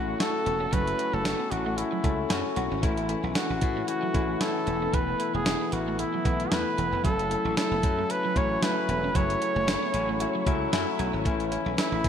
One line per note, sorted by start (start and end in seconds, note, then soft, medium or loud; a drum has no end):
0.00 0.13 A1 medium
0.00 2.79 C#3 medium
0.00 2.79 F#3 medium
0.00 0.19 A3 loud
0.00 11.22 A3 medium
0.00 0.20 C#4 medium
0.00 0.20 E4 loud
0.00 2.79 E4 medium
0.00 0.17 F#4 medium
0.00 0.20 F#4 loud
0.19 0.39 A3 medium
0.19 0.39 C#4 medium
0.19 0.40 E4 medium
0.19 0.40 F#4 loud
0.19 0.75 A4 loud
0.19 muted clean electric guitar stroke soft
0.19 snare loud
0.19 closed hi-hat medium
0.46 0.66 E1 medium
0.46 0.66 A3 medium
0.46 0.55 B3 medium
0.46 0.66 C#4 medium
0.46 0.66 E4 medium
0.46 0.66 F#4 medium
0.46 closed hi-hat medium
0.60 0.67 C#4 medium
0.72 0.92 F#1 loud
0.72 0.81 F#3 medium
0.72 0.92 A3 medium
0.72 0.92 C#4 medium
0.72 0.92 E4 medium
0.72 0.93 F#4 loud
0.72 1.16 B4 loud
0.72 kick loud
0.72 closed hi-hat medium
0.87 closed hi-hat soft
0.99 1.18 A3 medium
0.99 1.19 C#4 medium
0.99 1.19 E4 medium
0.99 1.19 F#4 medium
0.99 muted clean electric guitar stroke soft
0.99 closed hi-hat medium
1.13 1.33 F#1 medium
1.13 1.20 A3 medium
1.13 1.53 A4 medium
1.24 1.44 A3 medium
1.24 1.45 C#4 medium
1.24 1.45 E4 medium
1.24 1.45 F#4 medium
1.24 snare loud
1.24 closed hi-hat medium
1.40 1.47 B3 medium
1.51 1.82 A1 medium
1.51 1.71 A3 medium
1.51 1.71 C#4 medium
1.51 1.71 E4 medium
1.51 1.79 F#4 medium
1.51 1.71 F#4 medium
1.51 muted clean electric guitar stroke soft
1.51 closed hi-hat medium
1.66 1.73 A3 medium
1.77 1.97 A3 medium
1.77 1.97 C#4 medium
1.77 2.57 E4 medium
1.77 1.97 E4 medium
1.77 1.98 F#4 medium
1.77 muted clean electric guitar stroke soft
1.77 closed hi-hat medium
1.92 1.99 F#3 medium
2.03 2.24 C#2 medium
2.03 2.23 A3 medium
2.03 2.13 A3 medium
2.03 2.23 C#4 medium
2.03 2.24 E4 medium
2.03 2.24 A4 loud
2.03 kick medium
2.03 closed hi-hat medium
2.29 2.41 F#2 medium
2.29 2.50 A3 medium
2.29 2.50 C#4 medium
2.29 2.57 C#4 medium
2.29 2.50 E4 medium
2.29 2.50 F#4 loud
2.29 muted clean electric guitar stroke soft
2.29 snare loud
2.29 closed hi-hat medium
2.56 2.68 B1 medium
2.56 2.76 A3 medium
2.56 2.65 B3 medium
2.56 2.76 C#4 medium
2.56 2.77 E4 medium
2.56 2.70 F#4 medium
2.56 2.77 F#4 medium
2.56 closed hi-hat medium
2.70 2.80 G#1 medium
2.70 2.79 C#4 medium
2.70 2.81 E4 medium
2.82 3.14 A1 loud
2.82 4.65 C#3 medium
2.82 3.02 E3 loud
2.82 7.00 E3 medium
2.82 3.03 A3 medium
2.82 2.92 A3 medium
2.82 3.03 C#4 loud
2.82 3.21 E4 medium
2.82 12.09 E4 medium
2.82 3.03 E4 loud
2.82 kick loud
2.82 closed hi-hat medium
2.97 closed hi-hat soft
3.09 3.29 E3 medium
3.09 3.29 A3 medium
3.09 3.29 C#4 medium
3.09 3.29 E4 medium
3.09 muted clean electric guitar stroke soft
3.09 closed hi-hat medium
3.24 3.33 B1 medium
3.24 3.31 B3 medium
3.35 3.55 E3 medium
3.35 3.55 A3 medium
3.35 3.55 C#4 medium
3.35 3.85 F#4 medium
3.35 3.55 F#4 medium
3.35 snare loud
3.35 closed hi-hat medium
3.50 3.59 A1 medium
3.50 3.57 C#4 medium
3.61 3.82 A2 medium
3.61 3.81 E3 medium
3.61 3.81 A3 medium
3.61 3.81 C#4 medium
3.61 3.82 E4 medium
3.61 muted clean electric guitar stroke soft
3.61 kick medium
3.61 closed hi-hat medium
3.77 3.84 A3 medium
3.87 4.07 E3 medium
3.87 4.08 A3 medium
3.87 4.08 C#4 medium
3.87 4.08 E4 medium
3.87 4.43 F#4 medium
3.87 muted clean electric guitar stroke soft
3.87 closed hi-hat medium
4.03 4.10 F#3 medium
4.14 4.34 A1 medium
4.14 4.34 E3 medium
4.14 4.34 A3 medium
4.14 4.23 A3 medium
4.14 4.34 C#4 medium
4.14 4.34 E4 loud
4.14 kick medium
4.14 closed hi-hat medium
4.40 4.60 E3 medium
4.40 4.60 A3 medium
4.40 4.60 C#4 medium
4.40 4.61 E4 medium
4.40 4.96 A4 medium
4.40 muted clean electric guitar stroke soft
4.40 snare loud
4.40 closed hi-hat medium
4.66 4.87 E1 medium
4.66 7.02 B2 medium
4.66 5.10 E3 medium
4.66 5.10 A3 medium
4.66 5.10 B3 medium
4.66 4.76 B3 medium
4.66 5.11 E4 medium
4.66 closed hi-hat medium
4.82 4.89 C#4 medium
4.94 5.13 E1 loud
4.94 5.02 E3 medium
4.94 5.34 B4 loud
4.94 kick loud
4.94 closed hi-hat medium
5.20 5.39 E3 medium
5.20 5.40 A3 medium
5.20 5.40 B3 medium
5.20 5.40 E4 medium
5.20 muted clean electric guitar stroke soft
5.20 closed hi-hat medium
5.34 5.54 E1 medium
5.34 5.42 A3 medium
5.34 5.75 G#4 medium
5.45 5.65 E3 medium
5.45 5.66 A3 medium
5.45 5.66 B3 medium
5.45 5.66 E4 medium
5.45 snare loud
5.45 closed hi-hat medium
5.61 5.68 B3 medium
5.72 6.03 A1 medium
5.72 5.92 E3 medium
5.72 5.92 A3 medium
5.72 5.92 B3 medium
5.72 5.93 E4 medium
5.72 6.01 F#4 medium
5.72 muted clean electric guitar stroke soft
5.72 closed hi-hat medium
5.88 5.95 A3 medium
5.99 6.18 E3 medium
5.99 6.19 A3 medium
5.99 6.19 B3 medium
5.99 6.54 E4 medium
5.99 6.19 E4 medium
5.99 muted clean electric guitar stroke soft
5.99 closed hi-hat medium
6.14 6.21 F#3 medium
6.25 6.45 B1 medium
6.25 6.45 E3 medium
6.25 6.34 E3 medium
6.25 6.45 A3 medium
6.25 6.45 B3 medium
6.25 6.45 E4 medium
6.25 kick medium
6.25 closed hi-hat medium
6.40 closed hi-hat soft
6.51 6.63 E2 medium
6.51 6.71 E3 medium
6.51 6.71 A3 medium
6.51 6.71 B3 medium
6.51 6.72 E4 loud
6.51 7.05 B4 medium
6.51 muted clean electric guitar stroke soft
6.51 snare loud
6.51 closed hi-hat medium
6.78 6.89 E1 medium
6.78 6.97 E3 medium
6.78 6.87 E3 medium
6.78 6.98 A3 medium
6.78 6.98 B3 medium
6.78 6.98 E4 medium
6.78 closed hi-hat medium
6.92 7.01 E1 medium
6.92 7.00 B3 medium
7.03 7.35 F#1 medium
7.03 11.21 C#3 medium
7.03 7.23 F#3 medium
7.03 11.21 F#3 medium
7.03 7.13 F#3 medium
7.03 7.24 A3 medium
7.03 7.24 C#4 medium
7.03 7.24 E4 medium
7.03 7.54 A4 loud
7.03 kick loud
7.03 closed hi-hat medium
7.19 closed hi-hat medium
7.30 7.50 F#3 medium
7.30 7.50 A3 medium
7.30 7.50 C#4 medium
7.30 7.51 E4 medium
7.30 muted clean electric guitar stroke soft
7.30 closed hi-hat medium
7.45 7.54 A1 medium
7.45 7.52 A3 medium
7.56 7.76 F#3 medium
7.56 7.76 A3 medium
7.56 7.77 C#4 medium
7.56 7.77 E4 medium
7.56 8.13 A4 medium
7.56 snare loud
7.56 closed hi-hat medium
7.71 7.80 F#1 medium
7.71 7.79 B3 medium
7.83 8.03 F#2 medium
7.83 8.03 F#3 medium
7.83 8.03 A3 medium
7.83 8.03 C#4 medium
7.83 8.03 E4 medium
7.83 muted clean electric guitar stroke soft
7.83 kick medium
7.83 closed hi-hat medium
7.99 8.05 A3 medium
8.09 8.29 F#3 medium
8.09 8.29 A3 medium
8.09 8.30 C#4 medium
8.09 8.30 E4 medium
8.09 8.39 B4 loud
8.09 muted clean electric guitar stroke soft
8.09 closed hi-hat medium
8.25 8.31 F#3 medium
8.35 8.56 A1 medium
8.35 8.55 F#3 medium
8.35 8.55 A3 medium
8.35 8.45 A3 medium
8.35 8.56 C#4 medium
8.35 8.56 E4 medium
8.35 8.65 C#5 medium
8.35 kick medium
8.35 closed hi-hat medium
8.62 8.82 F#3 medium
8.62 8.82 A3 medium
8.62 8.82 C#4 medium
8.62 8.82 E4 medium
8.62 9.17 B4 loud
8.62 muted clean electric guitar stroke soft
8.62 snare loud
8.62 closed hi-hat medium
8.88 9.08 E1 medium
8.88 9.08 F#3 medium
8.88 9.09 A3 medium
8.88 8.98 B3 medium
8.88 9.09 C#4 medium
8.88 9.09 E4 medium
8.88 closed hi-hat medium
9.04 9.11 C#4 medium
9.15 9.35 F#1 loud
9.15 9.34 F#3 medium
9.15 9.24 F#3 medium
9.15 9.35 A3 medium
9.15 9.35 C#4 medium
9.15 9.35 E4 loud
9.15 10.73 C#5 loud
9.15 kick loud
9.15 closed hi-hat medium
9.30 closed hi-hat soft
9.42 9.61 F#3 medium
9.42 9.61 A3 medium
9.42 9.61 C#4 medium
9.42 9.61 E4 medium
9.42 muted clean electric guitar stroke soft
9.42 closed hi-hat medium
9.56 9.75 F#1 medium
9.56 9.63 A3 medium
9.67 9.87 F#3 medium
9.67 9.87 A3 medium
9.67 9.87 C#4 medium
9.67 9.95 E4 medium
9.67 9.88 E4 medium
9.67 snare loud
9.67 closed hi-hat medium
9.83 9.89 B3 medium
9.94 10.25 A1 medium
9.94 10.13 F#3 medium
9.94 10.14 A3 medium
9.94 10.21 C#4 medium
9.94 10.14 C#4 medium
9.94 10.14 E4 medium
9.94 muted clean electric guitar stroke soft
9.94 closed hi-hat medium
10.09 10.16 A3 medium
10.20 10.40 F#3 medium
10.20 10.40 A3 medium
10.20 10.40 C#4 medium
10.20 10.40 E4 medium
10.20 10.53 F#4 loud
10.20 muted clean electric guitar stroke soft
10.20 closed hi-hat medium
10.35 10.42 F#3 medium
10.46 10.66 C#2 medium
10.46 10.66 F#3 loud
10.46 10.55 A3 medium
10.46 10.66 A3 loud
10.46 10.66 C#4 loud
10.46 10.66 E4 loud
10.46 kick medium
10.46 closed hi-hat medium
10.55 10.72 E4 medium
10.72 10.84 F#2 medium
10.72 10.92 F#3 loud
10.72 10.92 A3 loud
10.72 10.92 C#4 medium
10.72 11.00 E4 loud
10.72 10.93 E4 loud
10.72 muted clean electric guitar stroke soft
10.72 snare loud
10.72 closed hi-hat medium
10.99 11.10 B1 medium
10.99 11.18 F#3 medium
10.99 11.19 A3 medium
10.99 11.08 B3 medium
10.99 11.62 C#4 medium
10.99 11.19 C#4 medium
10.99 11.19 E4 medium
10.99 closed hi-hat medium
11.14 11.22 G#1 medium
11.14 11.20 C#4 medium
11.25 11.56 A1 loud
11.25 12.09 C#3 medium
11.25 11.45 E3 loud
11.25 12.09 E3 medium
11.25 11.34 A3 medium
11.25 11.45 A3 medium
11.25 12.09 A3 medium
11.25 11.45 C#4 medium
11.25 11.45 E4 loud
11.25 kick loud
11.25 closed hi-hat medium
11.40 closed hi-hat soft
11.51 11.71 E3 medium
11.51 11.71 A3 medium
11.51 11.71 C#4 medium
11.51 11.72 E4 medium
11.51 muted clean electric guitar stroke soft
11.51 closed hi-hat medium
11.66 11.75 B1 medium
11.66 11.73 B3 medium
11.78 11.97 E3 medium
11.78 11.98 A3 medium
11.78 11.98 C#4 medium
11.78 12.09 E4 medium
11.78 11.98 E4 medium
11.78 snare loud
11.78 closed hi-hat medium
11.92 12.01 A1 medium
11.92 11.99 C#4 medium
12.04 12.09 A2 medium
12.04 12.09 E3 medium
12.04 12.09 A3 medium
12.04 12.09 C#4 medium
12.04 12.09 E4 medium
12.04 muted clean electric guitar stroke soft
12.04 kick medium
12.04 closed hi-hat medium